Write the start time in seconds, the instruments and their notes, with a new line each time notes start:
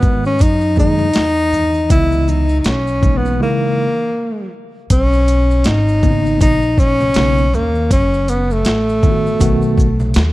Already playing: upright bass G#2, tine electric piano D#3 G#3 F#4 A#4, tenor saxophone B3
0.02 kick, low conga, maracas, shaker
0.25 tenor saxophone C#4, maracas
0.39 upright bass F#2, tenor saxophone D#4, kick, closed hi-hat, maracas
0.61 maracas
0.76 tine electric piano D#3 G#3 A#3 G#4, tenor saxophone D#4, kick, low conga, maracas, shaker
0.99 high conga, maracas
1.14 upright bass E2, snare, closed hi-hat, maracas
1.37 maracas
1.53 low conga, maracas, shaker
1.74 maracas
1.89 upright bass C#2, tine electric piano C#3 E3 B3 D#5, tenor saxophone E4, kick, closed hi-hat, maracas
2.12 high conga, maracas
2.28 tenor saxophone D#4, high conga, maracas, shaker
2.49 maracas
2.60 tenor saxophone D#4
2.64 upright bass B1, tenor saxophone C#4, snare, closed hi-hat, maracas
2.87 maracas
3.02 tine electric piano E3 G#3 A#3 D#4, kick, high conga, low conga, maracas, shaker
3.17 tenor saxophone B3
3.25 maracas
3.39 tine electric piano C#3 G#3 A#3 E4, tenor saxophone A#3
4.90 upright bass B1, tenor saxophone C#4, kick, closed hi-hat, maracas
5.13 maracas
5.28 closed hi-hat, shaker, maracas
5.51 maracas
5.64 upright bass G#1, tenor saxophone D#4, snare, closed hi-hat, maracas
5.88 maracas
6.02 tine electric piano C#3 A#3 B3 C#4, kick, low conga, shaker, maracas
6.11 tine electric piano D#4
6.26 maracas
6.40 upright bass A#1, tenor saxophone D#4, kick, closed hi-hat, maracas
6.62 maracas
6.78 tenor saxophone C#4, kick, maracas, shaker
7.00 high conga, maracas
7.14 upright bass B1, tine electric piano C#3 A#3 B3 D#4, snare, closed hi-hat, maracas
7.38 maracas
7.53 upright bass D#2, tenor saxophone A#3, low conga, maracas, shaker
7.75 maracas
7.91 upright bass F#1, tenor saxophone C#4, kick, closed hi-hat, maracas
8.14 maracas
8.28 tenor saxophone B3, closed hi-hat, shaker, maracas
8.51 tenor saxophone A3, maracas
8.65 upright bass A1, snare, closed hi-hat, maracas
8.89 maracas
9.02 tine electric piano D#3 A3 B3 E4, kick, low conga, shaker, maracas
9.10 tine electric piano F#4
9.26 maracas
9.39 upright bass B1, tine electric piano D#3 A3 B3 F#4, kick, closed hi-hat, maracas
9.62 maracas
9.78 kick, maracas, shaker
10.00 high conga, maracas
10.14 upright bass D#2, snare, closed hi-hat, maracas